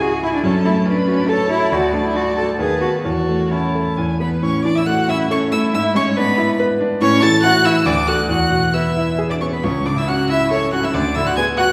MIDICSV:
0, 0, Header, 1, 5, 480
1, 0, Start_track
1, 0, Key_signature, 3, "major"
1, 0, Tempo, 428266
1, 499, Time_signature, 3, 2, 24, 8
1, 2904, Tempo, 452830
1, 5784, Tempo, 425532
1, 8664, Tempo, 442804
1, 11064, Tempo, 428571
1, 12911, End_track
2, 0, Start_track
2, 0, Title_t, "Violin"
2, 0, Program_c, 0, 40
2, 0, Note_on_c, 0, 68, 78
2, 488, Note_off_c, 0, 68, 0
2, 494, Note_on_c, 0, 69, 73
2, 960, Note_off_c, 0, 69, 0
2, 969, Note_on_c, 0, 71, 80
2, 1436, Note_off_c, 0, 71, 0
2, 1447, Note_on_c, 0, 73, 84
2, 1929, Note_on_c, 0, 74, 84
2, 1946, Note_off_c, 0, 73, 0
2, 2902, Note_on_c, 0, 71, 69
2, 2918, Note_off_c, 0, 74, 0
2, 3383, Note_on_c, 0, 73, 63
2, 3399, Note_off_c, 0, 71, 0
2, 4606, Note_off_c, 0, 73, 0
2, 4612, Note_on_c, 0, 83, 73
2, 4697, Note_off_c, 0, 83, 0
2, 4856, Note_on_c, 0, 85, 91
2, 5079, Note_off_c, 0, 85, 0
2, 5085, Note_on_c, 0, 86, 90
2, 5220, Note_on_c, 0, 88, 90
2, 5236, Note_off_c, 0, 86, 0
2, 5317, Note_on_c, 0, 90, 90
2, 5333, Note_off_c, 0, 88, 0
2, 5547, Note_off_c, 0, 90, 0
2, 5553, Note_on_c, 0, 88, 99
2, 5638, Note_off_c, 0, 88, 0
2, 5788, Note_on_c, 0, 85, 102
2, 5878, Note_off_c, 0, 85, 0
2, 6023, Note_on_c, 0, 88, 108
2, 6114, Note_off_c, 0, 88, 0
2, 6277, Note_on_c, 0, 88, 100
2, 6367, Note_off_c, 0, 88, 0
2, 6521, Note_on_c, 0, 85, 104
2, 6611, Note_off_c, 0, 85, 0
2, 6755, Note_on_c, 0, 83, 100
2, 7223, Note_off_c, 0, 83, 0
2, 7701, Note_on_c, 0, 85, 122
2, 7946, Note_on_c, 0, 93, 124
2, 7963, Note_off_c, 0, 85, 0
2, 8176, Note_off_c, 0, 93, 0
2, 8183, Note_on_c, 0, 90, 126
2, 8425, Note_on_c, 0, 88, 102
2, 8442, Note_off_c, 0, 90, 0
2, 8660, Note_on_c, 0, 86, 117
2, 8676, Note_off_c, 0, 88, 0
2, 8895, Note_on_c, 0, 90, 103
2, 8912, Note_off_c, 0, 86, 0
2, 9124, Note_off_c, 0, 90, 0
2, 9130, Note_on_c, 0, 90, 96
2, 9609, Note_on_c, 0, 88, 82
2, 9625, Note_off_c, 0, 90, 0
2, 10098, Note_off_c, 0, 88, 0
2, 10233, Note_on_c, 0, 86, 85
2, 10280, Note_off_c, 0, 86, 0
2, 10344, Note_on_c, 0, 85, 83
2, 10393, Note_off_c, 0, 85, 0
2, 10478, Note_on_c, 0, 83, 75
2, 10591, Note_on_c, 0, 85, 86
2, 10608, Note_off_c, 0, 83, 0
2, 10829, Note_on_c, 0, 86, 89
2, 10845, Note_off_c, 0, 85, 0
2, 10962, Note_on_c, 0, 88, 96
2, 10978, Note_off_c, 0, 86, 0
2, 11072, Note_on_c, 0, 90, 97
2, 11089, Note_off_c, 0, 88, 0
2, 11312, Note_off_c, 0, 90, 0
2, 11319, Note_on_c, 0, 88, 98
2, 11551, Note_off_c, 0, 88, 0
2, 11559, Note_on_c, 0, 85, 95
2, 11792, Note_off_c, 0, 85, 0
2, 11802, Note_on_c, 0, 90, 97
2, 11926, Note_on_c, 0, 88, 79
2, 11942, Note_off_c, 0, 90, 0
2, 12031, Note_on_c, 0, 86, 95
2, 12048, Note_off_c, 0, 88, 0
2, 12268, Note_on_c, 0, 88, 105
2, 12284, Note_off_c, 0, 86, 0
2, 12400, Note_on_c, 0, 90, 106
2, 12417, Note_off_c, 0, 88, 0
2, 12501, Note_off_c, 0, 90, 0
2, 12508, Note_on_c, 0, 92, 102
2, 12598, Note_off_c, 0, 92, 0
2, 12747, Note_on_c, 0, 90, 116
2, 12911, Note_off_c, 0, 90, 0
2, 12911, End_track
3, 0, Start_track
3, 0, Title_t, "Violin"
3, 0, Program_c, 1, 40
3, 0, Note_on_c, 1, 80, 76
3, 491, Note_on_c, 1, 81, 68
3, 508, Note_off_c, 1, 80, 0
3, 963, Note_on_c, 1, 83, 75
3, 980, Note_off_c, 1, 81, 0
3, 1443, Note_on_c, 1, 81, 73
3, 1460, Note_off_c, 1, 83, 0
3, 1918, Note_off_c, 1, 81, 0
3, 1925, Note_on_c, 1, 81, 69
3, 2376, Note_off_c, 1, 81, 0
3, 2411, Note_on_c, 1, 81, 68
3, 2890, Note_off_c, 1, 81, 0
3, 2897, Note_on_c, 1, 81, 64
3, 3372, Note_off_c, 1, 81, 0
3, 3380, Note_on_c, 1, 81, 59
3, 3867, Note_off_c, 1, 81, 0
3, 3877, Note_on_c, 1, 81, 56
3, 4366, Note_on_c, 1, 80, 58
3, 4382, Note_off_c, 1, 81, 0
3, 4604, Note_off_c, 1, 80, 0
3, 4610, Note_on_c, 1, 71, 70
3, 4849, Note_on_c, 1, 73, 84
3, 4865, Note_off_c, 1, 71, 0
3, 5079, Note_off_c, 1, 73, 0
3, 5085, Note_on_c, 1, 74, 74
3, 5194, Note_on_c, 1, 76, 86
3, 5210, Note_off_c, 1, 74, 0
3, 5311, Note_off_c, 1, 76, 0
3, 5318, Note_on_c, 1, 78, 96
3, 5553, Note_on_c, 1, 76, 89
3, 5569, Note_off_c, 1, 78, 0
3, 5783, Note_on_c, 1, 73, 80
3, 5799, Note_off_c, 1, 76, 0
3, 6031, Note_off_c, 1, 73, 0
3, 6040, Note_on_c, 1, 76, 82
3, 6269, Note_off_c, 1, 76, 0
3, 6275, Note_on_c, 1, 76, 104
3, 6511, Note_off_c, 1, 76, 0
3, 6516, Note_on_c, 1, 73, 96
3, 6752, Note_on_c, 1, 71, 90
3, 6769, Note_off_c, 1, 73, 0
3, 7231, Note_off_c, 1, 71, 0
3, 7705, Note_on_c, 1, 73, 116
3, 7946, Note_on_c, 1, 81, 105
3, 7963, Note_off_c, 1, 73, 0
3, 8175, Note_off_c, 1, 81, 0
3, 8182, Note_on_c, 1, 78, 126
3, 8272, Note_off_c, 1, 78, 0
3, 8426, Note_on_c, 1, 76, 90
3, 8517, Note_off_c, 1, 76, 0
3, 8669, Note_on_c, 1, 74, 90
3, 8756, Note_off_c, 1, 74, 0
3, 8901, Note_on_c, 1, 78, 79
3, 8988, Note_off_c, 1, 78, 0
3, 9129, Note_on_c, 1, 78, 84
3, 9605, Note_off_c, 1, 78, 0
3, 9614, Note_on_c, 1, 76, 77
3, 10090, Note_off_c, 1, 76, 0
3, 10217, Note_on_c, 1, 74, 66
3, 10267, Note_off_c, 1, 74, 0
3, 10347, Note_on_c, 1, 73, 62
3, 10395, Note_off_c, 1, 73, 0
3, 10466, Note_on_c, 1, 71, 66
3, 10514, Note_off_c, 1, 71, 0
3, 10590, Note_on_c, 1, 73, 77
3, 10677, Note_off_c, 1, 73, 0
3, 10826, Note_on_c, 1, 74, 78
3, 10874, Note_off_c, 1, 74, 0
3, 10948, Note_on_c, 1, 76, 84
3, 11055, Note_off_c, 1, 76, 0
3, 11062, Note_on_c, 1, 78, 100
3, 11151, Note_off_c, 1, 78, 0
3, 11308, Note_on_c, 1, 76, 99
3, 11546, Note_off_c, 1, 76, 0
3, 11551, Note_on_c, 1, 73, 84
3, 11781, Note_off_c, 1, 73, 0
3, 11787, Note_on_c, 1, 78, 78
3, 11837, Note_off_c, 1, 78, 0
3, 11907, Note_on_c, 1, 76, 76
3, 11956, Note_off_c, 1, 76, 0
3, 12029, Note_on_c, 1, 74, 100
3, 12119, Note_off_c, 1, 74, 0
3, 12267, Note_on_c, 1, 76, 88
3, 12372, Note_off_c, 1, 76, 0
3, 12379, Note_on_c, 1, 78, 90
3, 12503, Note_off_c, 1, 78, 0
3, 12508, Note_on_c, 1, 80, 97
3, 12597, Note_off_c, 1, 80, 0
3, 12737, Note_on_c, 1, 78, 112
3, 12826, Note_off_c, 1, 78, 0
3, 12911, End_track
4, 0, Start_track
4, 0, Title_t, "Cello"
4, 0, Program_c, 2, 42
4, 16, Note_on_c, 2, 66, 100
4, 252, Note_off_c, 2, 66, 0
4, 259, Note_on_c, 2, 64, 99
4, 376, Note_off_c, 2, 64, 0
4, 389, Note_on_c, 2, 62, 88
4, 496, Note_off_c, 2, 62, 0
4, 502, Note_on_c, 2, 61, 95
4, 592, Note_off_c, 2, 61, 0
4, 732, Note_on_c, 2, 64, 102
4, 822, Note_off_c, 2, 64, 0
4, 980, Note_on_c, 2, 62, 76
4, 1204, Note_off_c, 2, 62, 0
4, 1211, Note_on_c, 2, 61, 90
4, 1343, Note_on_c, 2, 62, 87
4, 1359, Note_off_c, 2, 61, 0
4, 1439, Note_on_c, 2, 69, 108
4, 1456, Note_off_c, 2, 62, 0
4, 1679, Note_off_c, 2, 69, 0
4, 1686, Note_on_c, 2, 64, 105
4, 1936, Note_on_c, 2, 66, 88
4, 1953, Note_off_c, 2, 64, 0
4, 2169, Note_on_c, 2, 62, 87
4, 2186, Note_off_c, 2, 66, 0
4, 2290, Note_off_c, 2, 62, 0
4, 2306, Note_on_c, 2, 64, 86
4, 2420, Note_on_c, 2, 66, 91
4, 2437, Note_off_c, 2, 64, 0
4, 2652, Note_off_c, 2, 66, 0
4, 2659, Note_on_c, 2, 69, 89
4, 2748, Note_off_c, 2, 69, 0
4, 2912, Note_on_c, 2, 68, 96
4, 3130, Note_off_c, 2, 68, 0
4, 3137, Note_on_c, 2, 66, 94
4, 3221, Note_off_c, 2, 66, 0
4, 3381, Note_on_c, 2, 66, 84
4, 3874, Note_on_c, 2, 64, 63
4, 3890, Note_off_c, 2, 66, 0
4, 4604, Note_off_c, 2, 64, 0
4, 4616, Note_on_c, 2, 59, 69
4, 4700, Note_off_c, 2, 59, 0
4, 4857, Note_on_c, 2, 61, 86
4, 5079, Note_off_c, 2, 61, 0
4, 5085, Note_on_c, 2, 62, 76
4, 5132, Note_off_c, 2, 62, 0
4, 5210, Note_on_c, 2, 64, 75
4, 5255, Note_off_c, 2, 64, 0
4, 5327, Note_on_c, 2, 66, 74
4, 5562, Note_on_c, 2, 64, 87
4, 5578, Note_off_c, 2, 66, 0
4, 5782, Note_off_c, 2, 64, 0
4, 5788, Note_on_c, 2, 61, 80
4, 6041, Note_on_c, 2, 64, 93
4, 6057, Note_off_c, 2, 61, 0
4, 6279, Note_off_c, 2, 64, 0
4, 6288, Note_on_c, 2, 64, 101
4, 6513, Note_on_c, 2, 61, 94
4, 6530, Note_off_c, 2, 64, 0
4, 6755, Note_on_c, 2, 59, 81
4, 6772, Note_off_c, 2, 61, 0
4, 7232, Note_off_c, 2, 59, 0
4, 7710, Note_on_c, 2, 61, 116
4, 7951, Note_on_c, 2, 69, 106
4, 7968, Note_off_c, 2, 61, 0
4, 8182, Note_off_c, 2, 69, 0
4, 8189, Note_on_c, 2, 66, 106
4, 8423, Note_on_c, 2, 64, 90
4, 8440, Note_off_c, 2, 66, 0
4, 8650, Note_off_c, 2, 64, 0
4, 8656, Note_on_c, 2, 62, 85
4, 8889, Note_off_c, 2, 62, 0
4, 8894, Note_on_c, 2, 66, 82
4, 8981, Note_off_c, 2, 66, 0
4, 9134, Note_on_c, 2, 66, 88
4, 9607, Note_off_c, 2, 66, 0
4, 9619, Note_on_c, 2, 64, 62
4, 10093, Note_off_c, 2, 64, 0
4, 10225, Note_on_c, 2, 62, 67
4, 10349, Note_on_c, 2, 61, 75
4, 10365, Note_off_c, 2, 62, 0
4, 10464, Note_on_c, 2, 59, 63
4, 10480, Note_off_c, 2, 61, 0
4, 10577, Note_off_c, 2, 59, 0
4, 10584, Note_on_c, 2, 61, 87
4, 10816, Note_off_c, 2, 61, 0
4, 10823, Note_on_c, 2, 62, 89
4, 10872, Note_off_c, 2, 62, 0
4, 10946, Note_on_c, 2, 64, 73
4, 11073, Note_on_c, 2, 66, 82
4, 11090, Note_off_c, 2, 64, 0
4, 11309, Note_on_c, 2, 64, 81
4, 11326, Note_off_c, 2, 66, 0
4, 11550, Note_on_c, 2, 61, 90
4, 11567, Note_off_c, 2, 64, 0
4, 11784, Note_off_c, 2, 61, 0
4, 11790, Note_on_c, 2, 66, 97
4, 11839, Note_off_c, 2, 66, 0
4, 11915, Note_on_c, 2, 64, 73
4, 11963, Note_off_c, 2, 64, 0
4, 12029, Note_on_c, 2, 62, 88
4, 12278, Note_on_c, 2, 64, 94
4, 12295, Note_off_c, 2, 62, 0
4, 12405, Note_on_c, 2, 66, 84
4, 12422, Note_off_c, 2, 64, 0
4, 12505, Note_off_c, 2, 66, 0
4, 12512, Note_on_c, 2, 68, 79
4, 12602, Note_off_c, 2, 68, 0
4, 12755, Note_on_c, 2, 66, 103
4, 12845, Note_off_c, 2, 66, 0
4, 12911, End_track
5, 0, Start_track
5, 0, Title_t, "Grand piano"
5, 0, Program_c, 3, 0
5, 0, Control_c, 3, 64, 127
5, 0, Note_on_c, 3, 37, 72
5, 0, Note_on_c, 3, 56, 61
5, 0, Note_on_c, 3, 61, 55
5, 0, Note_on_c, 3, 64, 63
5, 23, Note_on_c, 3, 68, 66
5, 168, Note_off_c, 3, 64, 0
5, 259, Note_on_c, 3, 64, 63
5, 404, Note_off_c, 3, 68, 0
5, 456, Note_off_c, 3, 37, 0
5, 487, Note_on_c, 3, 42, 82
5, 497, Note_off_c, 3, 64, 0
5, 520, Control_c, 3, 64, 0
5, 522, Note_off_c, 3, 61, 0
5, 528, Note_off_c, 3, 56, 0
5, 695, Control_c, 3, 64, 127
5, 729, Note_on_c, 3, 57, 59
5, 964, Note_on_c, 3, 61, 64
5, 1111, Note_off_c, 3, 57, 0
5, 1206, Note_on_c, 3, 66, 67
5, 1348, Note_off_c, 3, 61, 0
5, 1442, Note_on_c, 3, 69, 68
5, 1588, Note_off_c, 3, 66, 0
5, 1680, Note_on_c, 3, 66, 66
5, 1827, Note_off_c, 3, 69, 0
5, 1878, Note_off_c, 3, 42, 0
5, 1924, Note_off_c, 3, 66, 0
5, 1925, Note_on_c, 3, 38, 76
5, 1948, Control_c, 3, 64, 0
5, 2105, Control_c, 3, 64, 127
5, 2165, Note_on_c, 3, 57, 58
5, 2405, Note_on_c, 3, 62, 53
5, 2556, Note_off_c, 3, 57, 0
5, 2652, Note_on_c, 3, 66, 56
5, 2801, Note_off_c, 3, 62, 0
5, 2874, Note_off_c, 3, 38, 0
5, 2900, Note_on_c, 3, 39, 69
5, 2902, Note_off_c, 3, 66, 0
5, 2925, Control_c, 3, 64, 0
5, 3116, Control_c, 3, 64, 127
5, 3140, Note_on_c, 3, 59, 48
5, 3144, Note_on_c, 3, 66, 55
5, 3359, Note_off_c, 3, 59, 0
5, 3362, Note_off_c, 3, 66, 0
5, 3368, Note_off_c, 3, 39, 0
5, 3388, Note_on_c, 3, 40, 61
5, 3408, Control_c, 3, 64, 0
5, 3570, Control_c, 3, 64, 127
5, 3639, Note_on_c, 3, 57, 49
5, 3882, Note_on_c, 3, 61, 50
5, 4030, Note_off_c, 3, 57, 0
5, 4130, Note_on_c, 3, 69, 49
5, 4270, Note_off_c, 3, 61, 0
5, 4337, Note_off_c, 3, 40, 0
5, 4368, Note_off_c, 3, 69, 0
5, 4375, Note_on_c, 3, 40, 65
5, 4387, Control_c, 3, 64, 0
5, 4579, Control_c, 3, 64, 127
5, 4610, Note_on_c, 3, 59, 51
5, 4614, Note_on_c, 3, 71, 50
5, 4825, Note_off_c, 3, 59, 0
5, 4827, Note_off_c, 3, 71, 0
5, 4838, Note_off_c, 3, 40, 0
5, 4848, Note_on_c, 3, 45, 62
5, 4870, Control_c, 3, 64, 0
5, 5069, Control_c, 3, 64, 127
5, 5087, Note_on_c, 3, 52, 56
5, 5315, Note_on_c, 3, 57, 54
5, 5459, Note_off_c, 3, 52, 0
5, 5547, Note_on_c, 3, 61, 59
5, 5690, Note_off_c, 3, 57, 0
5, 5782, Note_on_c, 3, 69, 64
5, 5932, Note_off_c, 3, 61, 0
5, 6029, Note_on_c, 3, 57, 68
5, 6177, Note_off_c, 3, 69, 0
5, 6231, Note_off_c, 3, 45, 0
5, 6269, Note_on_c, 3, 44, 74
5, 6274, Note_off_c, 3, 57, 0
5, 6295, Control_c, 3, 64, 0
5, 6486, Control_c, 3, 64, 127
5, 6510, Note_on_c, 3, 56, 72
5, 6756, Note_on_c, 3, 62, 70
5, 6897, Note_off_c, 3, 56, 0
5, 6994, Note_on_c, 3, 64, 78
5, 7138, Note_off_c, 3, 62, 0
5, 7237, Note_on_c, 3, 71, 83
5, 7375, Note_off_c, 3, 64, 0
5, 7471, Note_on_c, 3, 62, 70
5, 7616, Note_off_c, 3, 71, 0
5, 7663, Note_off_c, 3, 44, 0
5, 7710, Note_off_c, 3, 62, 0
5, 7710, Note_on_c, 3, 45, 94
5, 7732, Control_c, 3, 64, 0
5, 7918, Control_c, 3, 64, 127
5, 7947, Note_on_c, 3, 52, 71
5, 8188, Note_on_c, 3, 64, 63
5, 8330, Note_off_c, 3, 52, 0
5, 8426, Note_on_c, 3, 52, 68
5, 8571, Note_off_c, 3, 64, 0
5, 8638, Note_off_c, 3, 45, 0
5, 8660, Note_on_c, 3, 38, 91
5, 8666, Note_off_c, 3, 52, 0
5, 8686, Control_c, 3, 64, 0
5, 8843, Control_c, 3, 64, 127
5, 8898, Note_on_c, 3, 66, 61
5, 8902, Note_on_c, 3, 69, 65
5, 9112, Note_off_c, 3, 66, 0
5, 9114, Note_off_c, 3, 69, 0
5, 9118, Note_off_c, 3, 38, 0
5, 9131, Note_on_c, 3, 40, 68
5, 9157, Control_c, 3, 64, 0
5, 9343, Control_c, 3, 64, 127
5, 9372, Note_on_c, 3, 47, 50
5, 9615, Note_on_c, 3, 59, 51
5, 9762, Note_off_c, 3, 47, 0
5, 9861, Note_on_c, 3, 64, 56
5, 10004, Note_off_c, 3, 59, 0
5, 10099, Note_on_c, 3, 68, 63
5, 10247, Note_off_c, 3, 64, 0
5, 10347, Note_on_c, 3, 59, 53
5, 10489, Note_off_c, 3, 68, 0
5, 10542, Note_off_c, 3, 40, 0
5, 10588, Note_off_c, 3, 59, 0
5, 10589, Note_on_c, 3, 37, 77
5, 10611, Control_c, 3, 64, 0
5, 10819, Control_c, 3, 64, 127
5, 10831, Note_on_c, 3, 49, 57
5, 11072, Note_on_c, 3, 61, 54
5, 11213, Note_off_c, 3, 49, 0
5, 11311, Note_on_c, 3, 64, 56
5, 11457, Note_off_c, 3, 61, 0
5, 11552, Note_on_c, 3, 69, 65
5, 11697, Note_off_c, 3, 64, 0
5, 11797, Note_on_c, 3, 61, 68
5, 11939, Note_off_c, 3, 69, 0
5, 11992, Note_off_c, 3, 37, 0
5, 12035, Note_on_c, 3, 38, 80
5, 12037, Note_off_c, 3, 61, 0
5, 12056, Control_c, 3, 64, 0
5, 12260, Control_c, 3, 64, 127
5, 12284, Note_on_c, 3, 50, 67
5, 12519, Note_on_c, 3, 59, 67
5, 12659, Note_off_c, 3, 50, 0
5, 12753, Note_on_c, 3, 66, 70
5, 12893, Note_off_c, 3, 59, 0
5, 12911, Note_off_c, 3, 38, 0
5, 12911, Note_off_c, 3, 66, 0
5, 12911, End_track
0, 0, End_of_file